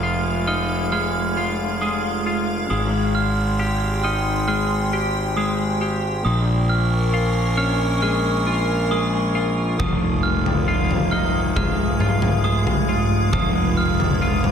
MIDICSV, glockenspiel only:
0, 0, Header, 1, 2, 480
1, 0, Start_track
1, 0, Key_signature, -4, "minor"
1, 0, Tempo, 886263
1, 1464, Time_signature, 4, 2, 24, 8
1, 7861, End_track
2, 0, Start_track
2, 0, Title_t, "Glockenspiel"
2, 0, Program_c, 0, 9
2, 0, Note_on_c, 0, 89, 44
2, 250, Note_off_c, 0, 89, 0
2, 257, Note_on_c, 0, 89, 46
2, 492, Note_off_c, 0, 89, 0
2, 498, Note_on_c, 0, 89, 52
2, 981, Note_off_c, 0, 89, 0
2, 983, Note_on_c, 0, 87, 48
2, 1456, Note_off_c, 0, 87, 0
2, 1463, Note_on_c, 0, 87, 45
2, 1704, Note_off_c, 0, 87, 0
2, 1705, Note_on_c, 0, 89, 50
2, 2179, Note_off_c, 0, 89, 0
2, 2185, Note_on_c, 0, 89, 44
2, 2418, Note_off_c, 0, 89, 0
2, 2425, Note_on_c, 0, 89, 54
2, 2906, Note_on_c, 0, 87, 51
2, 2907, Note_off_c, 0, 89, 0
2, 3376, Note_off_c, 0, 87, 0
2, 3383, Note_on_c, 0, 87, 51
2, 3626, Note_off_c, 0, 87, 0
2, 3626, Note_on_c, 0, 89, 52
2, 4096, Note_off_c, 0, 89, 0
2, 4102, Note_on_c, 0, 89, 48
2, 4339, Note_off_c, 0, 89, 0
2, 4345, Note_on_c, 0, 89, 52
2, 4826, Note_on_c, 0, 87, 53
2, 4827, Note_off_c, 0, 89, 0
2, 5297, Note_off_c, 0, 87, 0
2, 5303, Note_on_c, 0, 87, 52
2, 5541, Note_on_c, 0, 89, 55
2, 5545, Note_off_c, 0, 87, 0
2, 6013, Note_off_c, 0, 89, 0
2, 6019, Note_on_c, 0, 89, 51
2, 6256, Note_off_c, 0, 89, 0
2, 6263, Note_on_c, 0, 89, 60
2, 6738, Note_on_c, 0, 87, 58
2, 6742, Note_off_c, 0, 89, 0
2, 7211, Note_off_c, 0, 87, 0
2, 7217, Note_on_c, 0, 87, 55
2, 7457, Note_off_c, 0, 87, 0
2, 7460, Note_on_c, 0, 89, 56
2, 7861, Note_off_c, 0, 89, 0
2, 7861, End_track
0, 0, End_of_file